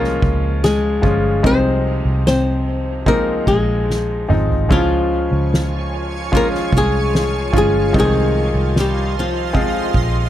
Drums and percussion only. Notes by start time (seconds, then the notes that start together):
0.04 snare
0.22 kick, ride
0.63 snare, ride
1.03 kick, ride
1.44 kick, ride
1.84 ride
2.26 snare, ride
2.65 ride
3.06 kick, ride
3.47 kick, ride
3.90 snare
4.30 mid tom
4.50 floor tom
4.70 kick, splash
5.11 ride
5.53 snare, ride
5.92 ride
6.33 kick, ride
6.55 snare
6.73 kick
7.14 snare, ride
7.53 kick, ride
7.94 kick, ride
8.34 ride
8.75 snare, ride
9.14 ride
9.55 kick, ride
9.94 kick, ride